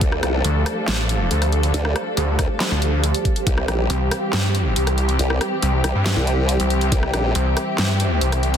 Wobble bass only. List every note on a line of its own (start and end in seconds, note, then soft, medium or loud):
0.01 0.21 D2 loud
0.23 0.43 C2 medium
1.74 1.94 D2 loud
2.39 2.48 D2 loud
3.47 3.67 C2 loud
3.68 3.88 A#1 medium
5.19 5.39 C2 loud
5.84 5.93 C2 loud
6.17 6.58 C2 loud
6.92 7.12 C2 loud
7.14 7.33 A#1 loud